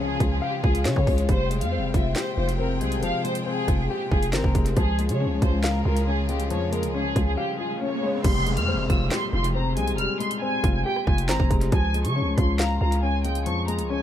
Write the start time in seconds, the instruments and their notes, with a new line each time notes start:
Already playing: 808-style bass C#2, string section C#3 F3 F4 G#4, grand piano F3 G#3 F4 F5
0.00 grand piano C#4, violin section G#4
0.20 808-style bass C#2, grand piano F4, kick, closed hi-hat
0.31 violin section G#4
0.42 violin section G4, grand piano F5
0.63 808-style bass C#2, grand piano F4, violin section G#4, kick
0.75 closed hi-hat
0.85 808-style bass C#3, grand piano C#4, violin section C#5, snare, clap, closed hi-hat
0.96 808-style bass C#3, kick
1.07 808-style bass C#2, grand piano G#3, kick, open hi-hat
1.18 closed hi-hat
1.29 808-style bass F1, string section C3 G5, grand piano G3, violin section C5, kick, closed hi-hat
1.50 grand piano G#3, closed hi-hat
1.61 808-style bass F2, violin section F5, closed hi-hat
1.72 grand piano C4
1.78 808-style bass F1
1.94 808-style bass F1, grand piano F4, violin section E5, kick, closed hi-hat
2.16 grand piano G4, violin section C5, snare, clap
2.38 808-style bass F1, grand piano F4, violin section C5
2.49 closed hi-hat
2.59 grand piano C4, violin section A#4
2.81 808-style bass C2, grand piano G#3, violin section G#4, closed hi-hat
2.92 closed hi-hat
2.97 808-style bass F1
3.03 grand piano F3, violin section F5, closed hi-hat
3.24 grand piano G#3, violin section C5, closed hi-hat
3.35 closed hi-hat
3.46 grand piano C4, violin section G#4
3.68 808-style bass F1, grand piano F4, kick, closed hi-hat
3.79 violin section G#4
3.90 violin section G4, grand piano G4
4.11 808-style bass F1, grand piano F4, violin section G#4, kick
4.23 closed hi-hat
4.33 808-style bass G#1, grand piano C4, violin section A#4, snare, clap, closed hi-hat
4.44 808-style bass F1, kick
4.55 808-style bass F1, grand piano G#3, kick, closed hi-hat
4.66 closed hi-hat
4.77 808-style bass C#2, string section C#3 G#3 F4 G#4, grand piano F3, violin section G#4, kick, closed hi-hat
4.99 grand piano G#3, closed hi-hat
5.09 808-style bass C#3, violin section C#5, closed hi-hat
5.20 grand piano C#4
5.26 808-style bass C#2
5.42 808-style bass C#2, grand piano F4, violin section C5, kick, closed hi-hat
5.64 violin section A#4, grand piano F5, snare, clap
5.85 808-style bass C#2, grand piano F4, violin section A#4
5.97 closed hi-hat
6.07 grand piano C#4, violin section G#4
6.29 grand piano G#3, violin section G4, closed hi-hat
6.40 closed hi-hat
6.50 808-style bass F2, grand piano F3, violin section C#5, closed hi-hat, riser
6.72 grand piano G#3, violin section A#4, closed hi-hat
6.83 808-style bass C#2, closed hi-hat
6.94 grand piano C#4, violin section G#4
7.16 808-style bass C#2, grand piano F4, kick, closed hi-hat
7.27 violin section G#4
7.37 violin section G4, grand piano F5
7.59 grand piano F4, violin section G#4
7.81 grand piano C#4, violin section C#5
8.03 grand piano G#3
8.24 808-style bass F1, grand piano G3, violin section C6, kick, closed hi-hat, crash, downlifter
8.46 grand piano G#3, closed hi-hat
8.57 808-style bass F2, violin section F6, closed hi-hat
8.68 grand piano C4
8.73 808-style bass F1
8.90 808-style bass F1, grand piano F4, violin section E6, kick, closed hi-hat
9.11 grand piano G4, violin section C6, snare, clap
9.33 808-style bass F1, grand piano F4, violin section C6
9.44 closed hi-hat
9.55 grand piano C4, violin section A#5
9.77 808-style bass C2, grand piano G#3, violin section G#5, closed hi-hat
9.88 closed hi-hat
9.93 808-style bass F1
9.98 grand piano G3, violin section F6, closed hi-hat
10.20 grand piano G#3, violin section C6, closed hi-hat
10.31 closed hi-hat
10.42 grand piano C4, violin section G#5
10.63 808-style bass F1, grand piano F4, kick, closed hi-hat
10.74 violin section G#5
10.85 grand piano G4, violin section G5
10.96 cross-stick
11.07 808-style bass F1, grand piano F4, violin section G#5, kick
11.18 closed hi-hat
11.29 808-style bass G#1, grand piano C4, violin section A#5, snare, clap, closed hi-hat
11.40 808-style bass F1, kick
11.51 808-style bass F1, grand piano G#3, kick, closed hi-hat
11.61 closed hi-hat
11.72 808-style bass C#2, grand piano F3, violin section G#5, kick, closed hi-hat
11.94 grand piano G#3, closed hi-hat
12.05 808-style bass C#3, violin section C#6, closed hi-hat
12.16 grand piano C#4
12.21 808-style bass C#2
12.38 808-style bass C#2, grand piano F4, violin section C6, kick, closed hi-hat
12.59 grand piano F5, violin section A#5, snare, clap
12.81 808-style bass C#2, grand piano F4, violin section A#5
12.92 closed hi-hat
13.03 grand piano C#4, violin section G#5
13.24 grand piano G#3, violin section G5, closed hi-hat
13.35 closed hi-hat
13.46 808-style bass F2, grand piano F3, violin section C#6, closed hi-hat
13.68 grand piano G#3, violin section A#5, closed hi-hat
13.79 808-style bass C#2, closed hi-hat
13.90 grand piano C#4, violin section G#5